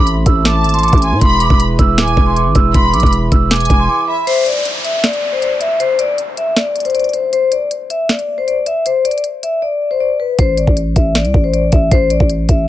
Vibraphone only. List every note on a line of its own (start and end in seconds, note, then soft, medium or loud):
0.26 0.43 E6 medium
0.45 0.72 D6 medium
0.74 0.82 C6 medium
0.83 1.00 D6 medium
1.02 1.19 C6 medium
1.22 1.38 C6 loud
1.41 1.57 D6 medium
1.79 1.95 E6 medium
1.98 2.25 D6 medium
2.26 2.35 C6 medium
2.36 2.53 D6 medium
2.55 2.72 E6 medium
2.75 2.91 C6 medium
2.93 3.10 D6 loud
3.32 3.48 E6 medium
3.51 3.78 D6 medium
3.79 3.88 C6 medium
3.89 4.05 D6 medium
4.08 4.25 B5 medium
4.27 4.44 C5 loud
4.85 5.01 E5 medium
5.04 5.31 D5 medium
5.32 5.41 C5 medium
5.42 5.58 D5 medium
5.61 5.77 E5 medium
5.80 5.97 C5 loud
5.99 6.16 D5 medium
6.38 6.54 E5 medium
6.57 6.84 D5 medium
6.85 6.93 C5 medium
6.95 7.11 D5 medium
7.14 7.30 C5 medium
7.33 7.50 C5 loud
7.52 7.69 D5 medium
7.90 8.07 E5 medium
8.10 8.36 D5 medium
8.38 8.46 C5 medium
8.48 8.64 D5 medium
8.67 8.83 E5 medium
8.86 9.03 C5 medium
9.05 9.21 D5 medium
9.43 9.60 E5 medium
9.62 9.89 D5 medium
9.91 9.99 C5 medium
10.00 10.17 D5 medium
10.20 10.36 B4 medium
10.39 10.55 C5 loud
10.58 10.74 D5 loud
10.96 11.13 E5 medium
11.15 11.42 D5 medium
11.44 11.52 C5 medium
11.53 11.70 D5 medium
11.72 11.89 E5 medium
11.92 12.08 C5 loud
12.11 12.27 D5 medium
12.49 12.66 E5 medium